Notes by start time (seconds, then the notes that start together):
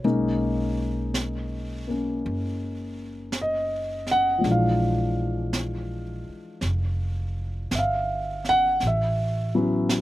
0.04 B1 G#3 A#3 C#4 D#4, brush sweep
1.14 brush sweep, snare, hi-hat pedal
1.87 A#3 C#4
2.25 F#1, brush sweep
3.32 brush sweep, snare, hi-hat pedal
3.41 D#5
4.07 snare
4.11 F#5
4.38 F3 G#3
4.44 A#1 D4, brush sweep, snare
4.48 E3 F5
5.53 brush sweep, snare, hi-hat pedal
6.29 muted upright bass stroke
6.61 F1, brush sweep, snare
7.71 G1 E5, brush sweep, snare, hi-hat pedal
7.79 F5
8.45 snare
8.49 F#5
8.80 A1, brush sweep, snare
8.87 E5
9.55 F#3 B3 C#4 E4
9.89 brush sweep, snare, hi-hat pedal